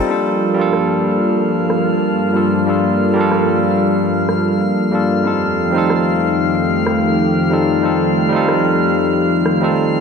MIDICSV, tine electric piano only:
0, 0, Header, 1, 2, 480
1, 0, Start_track
1, 0, Key_signature, -2, "minor"
1, 0, Tempo, 645161
1, 71, Time_signature, 4, 2, 24, 8
1, 7443, End_track
2, 0, Start_track
2, 0, Title_t, "Tine electric piano"
2, 0, Program_c, 0, 4
2, 0, Control_c, 0, 64, 127
2, 0, Note_on_c, 0, 55, 77
2, 0, Note_on_c, 0, 60, 71
2, 0, Note_on_c, 0, 63, 66
2, 0, Note_on_c, 0, 65, 67
2, 0, Note_on_c, 0, 69, 86
2, 58, Note_off_c, 0, 55, 0
2, 58, Note_on_c, 0, 55, 58
2, 65, Note_on_c, 0, 58, 52
2, 71, Note_on_c, 0, 62, 55
2, 78, Note_off_c, 0, 65, 0
2, 78, Note_on_c, 0, 65, 55
2, 82, Control_c, 0, 64, 0
2, 84, Note_off_c, 0, 60, 0
2, 84, Note_off_c, 0, 69, 0
2, 84, Note_on_c, 0, 69, 63
2, 88, Note_off_c, 0, 63, 0
2, 217, Control_c, 0, 64, 127
2, 394, Note_off_c, 0, 55, 0
2, 403, Note_off_c, 0, 58, 0
2, 403, Note_on_c, 0, 55, 79
2, 406, Note_off_c, 0, 62, 0
2, 409, Note_off_c, 0, 65, 0
2, 412, Note_off_c, 0, 69, 0
2, 419, Note_on_c, 0, 58, 69
2, 432, Note_on_c, 0, 62, 69
2, 443, Note_on_c, 0, 65, 68
2, 457, Note_on_c, 0, 69, 85
2, 1707, Note_off_c, 0, 55, 0
2, 1715, Note_off_c, 0, 58, 0
2, 1721, Note_off_c, 0, 62, 0
2, 1727, Note_off_c, 0, 65, 0
2, 1734, Note_off_c, 0, 69, 0
2, 1734, Note_on_c, 0, 55, 62
2, 1739, Note_on_c, 0, 58, 57
2, 1747, Note_on_c, 0, 62, 54
2, 1754, Note_on_c, 0, 65, 55
2, 1761, Note_on_c, 0, 69, 72
2, 1955, Note_off_c, 0, 55, 0
2, 1957, Note_off_c, 0, 58, 0
2, 1961, Note_off_c, 0, 62, 0
2, 1965, Note_off_c, 0, 65, 0
2, 1968, Note_off_c, 0, 69, 0
2, 1980, Note_on_c, 0, 55, 58
2, 1984, Note_on_c, 0, 58, 53
2, 1991, Note_on_c, 0, 62, 57
2, 1999, Note_on_c, 0, 65, 58
2, 2006, Note_on_c, 0, 69, 65
2, 2320, Note_off_c, 0, 55, 0
2, 2322, Note_off_c, 0, 58, 0
2, 2326, Note_off_c, 0, 62, 0
2, 2330, Note_off_c, 0, 65, 0
2, 2332, Note_on_c, 0, 55, 81
2, 2333, Note_off_c, 0, 69, 0
2, 2347, Note_on_c, 0, 58, 73
2, 2359, Note_on_c, 0, 62, 71
2, 2375, Note_on_c, 0, 65, 69
2, 2385, Note_on_c, 0, 69, 84
2, 3631, Note_off_c, 0, 55, 0
2, 3639, Note_off_c, 0, 58, 0
2, 3645, Note_off_c, 0, 62, 0
2, 3653, Note_off_c, 0, 65, 0
2, 3655, Note_on_c, 0, 55, 64
2, 3658, Note_off_c, 0, 69, 0
2, 3664, Note_on_c, 0, 58, 59
2, 3669, Note_on_c, 0, 62, 62
2, 3677, Note_on_c, 0, 65, 57
2, 3683, Note_on_c, 0, 69, 68
2, 3875, Note_off_c, 0, 55, 0
2, 3879, Note_off_c, 0, 58, 0
2, 3882, Note_off_c, 0, 62, 0
2, 3886, Note_off_c, 0, 65, 0
2, 3889, Note_off_c, 0, 69, 0
2, 3897, Note_on_c, 0, 55, 61
2, 3904, Note_on_c, 0, 60, 55
2, 3910, Note_on_c, 0, 63, 57
2, 3916, Note_on_c, 0, 65, 55
2, 3920, Control_c, 0, 64, 0
2, 3923, Note_on_c, 0, 69, 69
2, 4042, Control_c, 0, 64, 127
2, 4239, Note_off_c, 0, 55, 0
2, 4242, Note_off_c, 0, 60, 0
2, 4245, Note_off_c, 0, 63, 0
2, 4247, Note_on_c, 0, 55, 76
2, 4248, Note_off_c, 0, 65, 0
2, 4251, Note_off_c, 0, 69, 0
2, 4258, Note_on_c, 0, 60, 70
2, 4272, Note_on_c, 0, 63, 73
2, 4287, Note_on_c, 0, 65, 68
2, 4299, Note_on_c, 0, 69, 84
2, 5549, Note_off_c, 0, 55, 0
2, 5554, Note_off_c, 0, 60, 0
2, 5561, Note_off_c, 0, 63, 0
2, 5569, Note_off_c, 0, 65, 0
2, 5575, Note_off_c, 0, 69, 0
2, 5580, Note_on_c, 0, 55, 65
2, 5586, Note_on_c, 0, 60, 57
2, 5592, Note_on_c, 0, 63, 61
2, 5602, Note_on_c, 0, 65, 58
2, 5605, Note_on_c, 0, 69, 69
2, 5797, Note_off_c, 0, 55, 0
2, 5801, Note_off_c, 0, 60, 0
2, 5804, Note_off_c, 0, 63, 0
2, 5809, Note_off_c, 0, 65, 0
2, 5810, Note_off_c, 0, 69, 0
2, 5815, Note_on_c, 0, 55, 58
2, 5824, Note_on_c, 0, 60, 57
2, 5829, Note_on_c, 0, 63, 56
2, 5836, Note_on_c, 0, 65, 57
2, 5844, Note_on_c, 0, 69, 64
2, 6158, Note_off_c, 0, 55, 0
2, 6162, Note_off_c, 0, 60, 0
2, 6164, Note_off_c, 0, 63, 0
2, 6168, Note_off_c, 0, 65, 0
2, 6168, Note_on_c, 0, 55, 82
2, 6172, Note_off_c, 0, 69, 0
2, 6180, Note_on_c, 0, 60, 69
2, 6194, Note_on_c, 0, 63, 73
2, 6210, Note_on_c, 0, 65, 75
2, 6221, Note_on_c, 0, 69, 83
2, 7117, Note_off_c, 0, 55, 0
2, 7123, Note_off_c, 0, 60, 0
2, 7130, Note_off_c, 0, 63, 0
2, 7138, Note_off_c, 0, 65, 0
2, 7144, Note_off_c, 0, 69, 0
2, 7147, Note_on_c, 0, 55, 73
2, 7153, Note_on_c, 0, 60, 66
2, 7162, Note_on_c, 0, 63, 70
2, 7167, Note_on_c, 0, 65, 68
2, 7174, Note_on_c, 0, 69, 81
2, 7443, Note_off_c, 0, 55, 0
2, 7443, Note_off_c, 0, 60, 0
2, 7443, Note_off_c, 0, 63, 0
2, 7443, Note_off_c, 0, 65, 0
2, 7443, Note_off_c, 0, 69, 0
2, 7443, End_track
0, 0, End_of_file